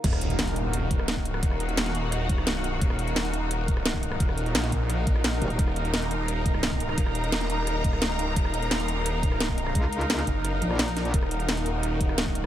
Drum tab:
CC |x---------------|----------------|----------------|----------------|
HH |x-xxxxx-x-x-x-x-|x-xxxxx-x-x-x-x-|x-xxxxx-x-x-x-x-|x-xxxxx-x-x-x-xx|
SD |-r--o------ro--r|-r--oo--r--ro---|-r--o------ro--r|-r--oo--r--ro---|
BD |o---------o--o--|o---------o-----|o---------o--o--|o-----o---o-----|

CC |----------------|----------------|----------------|----------------|
HH |x-xxxxx-x-x-x-x-|x-xxxxx-x-x-x-x-|x-xxxxx-x-x-x-x-|x-xxxxx-x-x-xxxx|
SD |-r--o------ro--r|-r--oo--r--ro---|-r--o------ro--r|-r--oo--r--ro-o-|
BD |o---------o--o--|o---------o-----|o---------o--o--|o-----o---------|

CC |----------------|
HH |x-xxxxx-x-x-x-x-|
SD |-r--o------ro---|
BD |o---------o--o--|